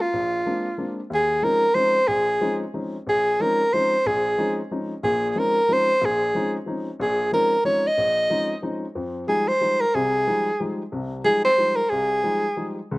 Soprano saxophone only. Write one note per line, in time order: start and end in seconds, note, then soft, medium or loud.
0.01 0.98 F4 medium
1.14 1.45 G#4 medium
1.44 1.76 A#4 medium
1.75 2.09 C5 loud
2.08 2.61 G#4 medium
3.09 3.43 G#4 medium
3.41 3.75 A#4 medium
3.73 4.09 C5 medium
4.07 4.59 G#4 medium
5.04 5.30 G#4 medium
5.30 5.41 G#4 medium
5.39 5.75 A#4 medium
5.73 6.07 C5 loud
6.05 6.56 G#4 medium
7.02 7.31 G#4 medium
7.34 7.63 A#4 medium
7.66 7.89 C#5 medium
7.87 8.64 D#5 medium
9.29 9.50 G#4 medium
9.48 9.82 C5 medium
9.81 9.96 A#4 medium
9.95 10.80 G#4 medium
11.25 11.44 G#4 medium
11.45 11.77 C5 loud
11.76 11.91 A#4 medium
11.90 12.76 G#4 medium